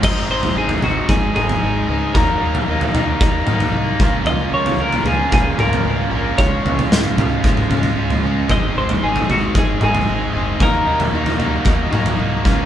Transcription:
<<
  \new Staff \with { instrumentName = "Clean electric guitar" } { \time 4/4 \key aes \mixolydian \tempo 4 = 114 ees''8 c''8 aes'8 ges'8 aes'8 aes'4. | bes'4 r2. | ees''8 des''8 bes'8 aes'8 aes'8 bes'4. | des''4 r2. |
ees''8 c''8 aes'8 ges'8 aes'8 aes'4. | bes'4 r2. | }
  \new Staff \with { instrumentName = "Overdriven electric guitar" } { \time 4/4 \key aes \mixolydian <c' ees' aes'>4 <c' ees' aes'>8 <ees' aes'>4 <ees' aes'>4 <ees' aes'>8 | <ges bes ees'>4 <ges bes ees'>8 <bes ees'>4 <bes ees'>4 <f bes des'>8 | <f bes des'>4 <f bes des'>8 <bes des'>4 <bes des'>4 <bes des'>8 | <f aes des'>4 <f aes des'>8 <aes des'>4 <aes des'>4 <aes des'>8 |
<ees aes c' aes'>4 <ees aes c' aes'>8 <aes c' aes'>4 <aes c' aes'>4 <aes c' aes'>8 | <ees bes ees' ges'>4 <ees bes ees' ges'>8 <bes ees' ges'>4 <bes ees' ges'>4 <f bes des' f'>8 | }
  \new Staff \with { instrumentName = "Overdriven electric guitar" } { \time 4/4 \key aes \mixolydian <aes, ees aes c' ees'>8 <aes c' ees'>8 <ees aes c' ees'>8 <aes, ees aes c' ees'>8 <ees aes c' ees'>8 <aes, ees aes c' ees'>8 <ees aes c' ees'>8 <aes c' ees'>8 | <ees ges bes ees'>8 <ges bes ees'>8 <ees ges bes ees'>8 <ees ges bes ees'>8 <ees ges bes ees'>8 <ees ges bes ees'>8 <ees ges bes ees'>8 <des f bes f'>8 | <des f bes f'>8 <f bes f'>8 <des f bes f'>8 <des f bes f'>8 <des f bes f'>8 <des f bes f'>8 <des f bes f'>8 <f bes f'>8 | <des aes des' f'>8 <aes des' f'>8 <des aes des' f'>8 <des aes des' f'>8 <des aes des' f'>8 <des aes des' f'>8 <des aes des' f'>8 <aes des' f'>8 |
<aes, ees aes c' ees'>8 <aes c' ees'>8 <ees aes c' ees'>8 <aes, ees aes c' ees'>8 <ees aes c' ees'>8 <aes, ees aes c' ees'>8 <ees aes c' ees'>8 <aes c' ees'>8 | <ees ges bes ees'>8 <ges bes ees'>8 <ees ges bes ees'>8 <ees ges bes ees'>8 <ees ges bes ees'>8 <ees ges bes ees'>8 <ees ges bes ees'>8 <des f bes des'>8 | }
  \new Staff \with { instrumentName = "Fingered electric bass" } { \clef bass \time 4/4 \key aes \mixolydian aes,,8 aes,,8 aes,,8 aes,,8 aes,,8 aes,,8 aes,,8 des,8 | ees,8 ees,8 ees,8 ees,8 ees,8 ees8 c,8 des,8 | des,8 des,8 des,8 des,8 des,8 des,8 des,8 bes,,8 | des,8 des,8 des,8 des,8 des,8 des8 des,8 des,8 |
aes,,8 aes,,8 aes,,8 aes,,8 aes,,8 aes,,8 aes,,8 ges,,8 | ees,8 ees,8 ees,8 ees,8 ees,8 ees8 c,8 des,8 | }
  \new DrumStaff \with { instrumentName = "Drums" } \drummode { \time 4/4 <cymc bd tomfh>8. tomfh16 r16 tomfh16 tomfh8 <bd tomfh>8 toml16 tomfh16 r4 | <bd tomfh>8. tomfh16 r16 tomfh16 tomfh8 <bd tomfh>8 toml16 tomfh16 r8 bd8 | tomfh8. tomfh16 r16 tomfh16 tomfh8 <bd tomfh>8 toml16 tomfh16 r4 | <bd tomfh>8 tomfh16 tomfh16 <sn toml>16 tomfh16 <tomfh toml>8 <bd tomfh>16 toml16 <tomfh toml>16 tomfh16 r16 tomfh8. |
<bd tomfh>8. tomfh16 r16 tomfh16 tomfh8 <bd tomfh>8 toml16 tomfh16 r4 | <bd tomfh>8. tomfh16 r16 tomfh16 tomfh8 <bd tomfh>8 toml16 tomfh16 r8 bd8 | }
>>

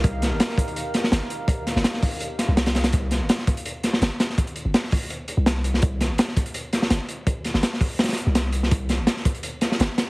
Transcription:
<<
  \new Staff \with { instrumentName = "Ambient pad" } { \time 4/4 \key c \minor \tempo 4 = 166 <ees' g' bes' f''>1~ | <ees' g' bes' f''>1 | r1 | r1 |
r1 | r1 | r1 | }
  \new Staff \with { instrumentName = "808-style bass" } { \clef bass \time 4/4 \key c \minor c,8. g,,16 r2 g,,16 r8. | r8. g,,16 r4. r16 c,4~ c,16 | c,8. g,,16 r2 g,,16 r8. | r8. g,,16 r4. r16 c,4~ c,16 |
c,8. g,,16 r2 g,,16 r8. | r8. g,,16 r4. r16 c,4~ c,16 | c,8. g,,16 r2 g,,16 r8. | }
  \new DrumStaff \with { instrumentName = "Drums" } \drummode { \time 4/4 <hh bd>8 <hh sn>8 <hh sn>16 sn16 <hh bd>16 hh16 hh8 <hh sn>16 sn16 <hh sn>8 hh8 | <hh bd>8 <hh sn>16 sn16 <hh sn>16 sn16 <hho bd>8 hh8 <hh sn>8 <hh sn>16 <hh sn>16 <hh sn>16 <hh sn>16 | <hh bd>8 <hh sn>8 <hh sn>16 sn16 <hh bd>16 hh16 hh8 <hh sn>16 sn16 <hh sn>8 <hh sn>16 sn16 | <hh bd>16 hh16 hh8 <hh sn>16 sn16 <hho bd>8 hh8 hh8 <hh sn>8 hh16 sn16 |
<hh bd>8 <hh sn>8 <hh sn>16 sn16 <hh bd>16 hh16 hh8 <hh sn>16 sn16 <hh sn>8 hh8 | <hh bd>8 <hh sn>16 sn16 <hh sn>16 sn16 <hho bd>8 <hh sn>32 <hh sn>32 <hh sn>32 <hh sn>32 hh8 <hh sn>8 hh16 sn16 | <hh bd>8 <hh sn>8 <hh sn>16 sn16 <hh bd>16 hh16 hh8 <hh sn>16 sn16 <hh sn>8 <hh sn>8 | }
>>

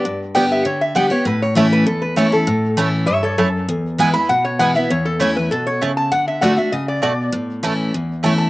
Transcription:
<<
  \new Staff \with { instrumentName = "Resonator guitar played with a steel bar" } { \time 4/4 \key a \mixolydian \tempo 4 = 198 d''8 r8 g''8 e''8 cis''8 e''8 fis''8 cis''8 | b'8 cis''8 e''8 b'8 a'8 b'8 cis''8 a'8~ | a'4. r8 <cis'' e''>8 <a' cis''>8 a'4 | \key a \major r4. b''8 fis''8 cis''8 fis''8 e''8 |
cis''8 a'8 cis''8 b'8 a'8 cis''8 r8 a''8 | fis''8 e''8 fis''8 e''8 dis''8 d''8 d''4 | r2. r8 a''8 | }
  \new Staff \with { instrumentName = "Mandolin" } { \time 4/4 \key a \mixolydian r4 <b g' d'' g''>8 r4. <b g' d'' g''>8 r8 | r4 <a e' cis'' a''>8 r4. <a e' cis'' a''>8 r8 | r4 <a e' cis'' a''>8 r4. <a e' cis'' a''>8 r8 | \key a \major r4 <b e' b' gis''>8 r4. <b e' b' gis''>8 r8 |
r4 <a e' cis'' a''>8 r4. <a e' cis'' a''>8 r8 | r4 <a fis' d'' a''>8 r4. <a fis' d'' a''>8 r8 | r4 <a e' cis'' a''>8 r4. <a e' cis'' a''>8 r8 | }
  \new Staff \with { instrumentName = "Steel-string acoustic guitar" } { \time 4/4 \key a \mixolydian << { r4 <d g b g'>4 r4 <d g b g'>8 <b g'>8 | r4 <e a cis' e'>4 r4 <e a cis' e'>8 <cis' e'>8 | r4 <e a cis' e'>4 r2 | \key a \major r4 <e gis b e'>8 <b e'>8 r4 <e gis b e'>8 <b e'>8 |
r4 <e a cis' e'>8 <cis' e'>8 r2 | r4 <d a d' fis'>8 <d' fis'>8 r2 | r4 <e a cis' e'>4 r4 <e a cis' e'>4 | } \\ { g,2 d2 | a,2 e,2 | a,2 g,4 fis,4 | e,2 b,2 |
e,2 b,4 cis4 | d2 cis4 b,4 | a,2 e,2 | } >> }
>>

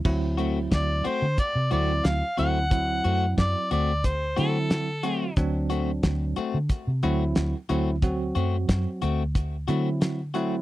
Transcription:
<<
  \new Staff \with { instrumentName = "Harmonica" } { \time 4/4 \key d \mixolydian \tempo 4 = 90 r4 d''8 c''8 d''8 d''8 f''8 fis''8~ | fis''4 d''8 d''8 c''8 a'4. | r1 | r1 | }
  \new Staff \with { instrumentName = "Clean electric guitar" } { \time 4/4 \key d \mixolydian r8 <a c' fis'>8 r8 <a c' fis'>8 r8 <a c' fis'>8 r8 <a c' fis'>8 | r8 <a c' fis'>8 r8 <a c' fis'>8 r8 <a c' fis'>8 r8 <a c' fis'>8 | r8 <a c' fis'>8 r8 <a c' fis'>8 r8 <a c' fis'>8 r8 <a c' fis'>8 | r8 <a c' fis'>8 r8 <a c' fis'>8 r8 <a c' fis'>8 r8 <a c' fis'>8 | }
  \new Staff \with { instrumentName = "Tine electric piano" } { \time 4/4 \key d \mixolydian <fis c' e'>4. r4 <fis c' e'>8. r16 <fis c' e'>8 | <fis c' e'>4. r4 <fis c' e'>8. r16 <fis c' fis'>8 | <fis c' d'>4. r4 <fis c' e'>8. r16 <fis c' e'>8 | <fis c' fis'>4. r4 <fis c' e'>8. r16 <fis c' e'>8 | }
  \new Staff \with { instrumentName = "Fingered electric bass" } { \clef bass \time 4/4 \key d \mixolydian d,4 d,8 r16 d16 r16 c16 d,8 d,16 r16 d,8~ | d,8 fis,8 fis,16 r16 d,4 d4. | d,4 d,8 r16 d16 r16 c16 d,8 d,16 r16 d,8~ | d,8 fis,8 fis,16 r16 d,4 d4. | }
  \new DrumStaff \with { instrumentName = "Drums" } \drummode { \time 4/4 <cymc bd>8 hh8 <hh bd sn>8 hh8 <hh bd>8 hh8 <hh sn>8 hh8 | <hh bd>8 hh8 <hh bd sn>8 hh8 <hh bd>8 hh8 <hh sn>8 hh8 | <hh bd>8 hh8 <hh bd sn>8 hh8 <hh bd>8 hh8 <hh sn>8 hh8 | <hh bd>8 hh8 <hh bd sn>8 hh8 <hh bd>8 hh8 <hh sn>8 hh8 | }
>>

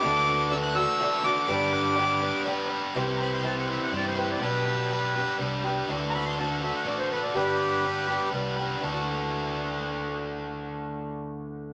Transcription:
<<
  \new Staff \with { instrumentName = "Accordion" } { \time 3/4 \key d \mixolydian \tempo 4 = 122 d'''4 e'''16 fis'''16 e'''4 d'''8~ | d'''2 r4 | r8 <bes'' b''>16 c'''16 a''16 fis''16 e''16 fis''16 d''16 c''16 b'16 d''16 | b'2 r4 |
r8 <bes'' b''>16 c'''16 a''16 fis''16 e''16 fis''16 d''16 c''16 b'16 d''16 | <g' b'>2 r4 | r2. | r2. | }
  \new Staff \with { instrumentName = "Reed electric piano" } { \time 3/4 \key d \mixolydian <fis' a' d'' e''>4 <fis' a' d'' e''>4 <fis' a' d'' e''>4 | <g' b' d'' g''>4 <g' b' d'' g''>4 <g' b' d'' g''>4 | r2. | r2. |
r2. | r2. | r2. | r2. | }
  \new Staff \with { instrumentName = "Overdriven electric guitar" } { \time 3/4 \key d \mixolydian <d d' fis' a'>8 <d' fis' a'>8 <d d' fis' a'>8 <d' fis' a'>8 <d d' fis' a'>8 <d' fis' a'>8 | <g b d' b'>8 <b d' b'>8 <g b d' b'>8 <b d' b'>8 <g b d' b'>8 <b d' b'>8 | <c e g c' e' c''>8 <g c' e' c''>8 <g c' e' c''>8 <c e g c' e' c''>8 <g c' e' c''>8 <c e g c' e' c''>8 | <b d' g' b'>8 <d' g' b'>8 <b d' g' b'>8 <b d' g' b'>8 <b d' g' b'>8 <b d' g' b'>8 |
<d d' fis' a'>8 <d' fis' a'>8 <d d' fis' a'>8 <d d' fis' a'>8 <d d' fis' a'>8 <d d' fis' a'>8 | <g b d' b'>8 <b d' b'>8 <g b d' b'>8 <g b d' b'>8 <g b d' b'>8 <g b d' b'>8 | <d a d' fis'>2.~ | <d a d' fis'>2. | }
  \new Staff \with { instrumentName = "Steel-string acoustic guitar" } { \time 3/4 \key d \mixolydian <d e a d' fis'>4 <e a d' fis'>8 <a d' fis'>8 <e a d' fis'>8 <a d' fis'>8 | <g, d g b d' g'>4 <g b d' g'>4 <g b d' g'>4 | <c e c' e' g'>4 <e c' e' g'>4 <e c' e' g'>8 <c' e' g'>8 | <b, g b d' g'>4 <g b d' g'>8 <b d' g'>8 <g b d' g'>8 <b d' g'>8 |
<d e a d' fis'>4 <e a d' fis'>8 <a d' fis'>8 <e a d' fis'>4 | <g, d g b d' g'>4 <g b d' g'>8 <g b d' g'>8 <g b d' g'>8 <g b d' g'>8 | <d e a d' fis'>2.~ | <d e a d' fis'>2. | }
  \new Staff \with { instrumentName = "Fingered electric bass" } { \clef bass \time 3/4 \key d \mixolydian d,2 r4 | g,,2 r4 | c,2 g,4 | b,,2 c,4 |
d,2 a,,4 | g,,2 c,4 | d,2.~ | d,2. | }
>>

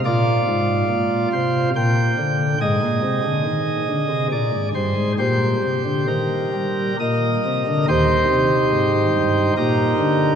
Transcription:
<<
  \new Staff \with { instrumentName = "Pipe organ" } { \time 3/4 \key ees \major \tempo 4 = 70 << { d''4. c''8 g''4 | ees''2 d''8 c''8 | c''4 bes'4 <bes' ees''>4 | <ees' g' c''>2 <ees' g' bes'>4 | } \\ { f'2 r4 | aes'2. | g'2 r4 | ees,8 r2 r8 | } >> }
  \new Staff \with { instrumentName = "Pipe organ" } { \clef bass \time 3/4 \key ees \major bes,8 aes,8 bes,8 c8 bes,8 d8 | aes,16 bes,16 c16 d16 ees8 d16 c16 bes,16 aes,16 g,16 aes,16 | bes,8 c16 d16 ees8 g8 bes,8 c16 d16 | ees8 c8 aes,8 g,8 bes,8 d8 | }
>>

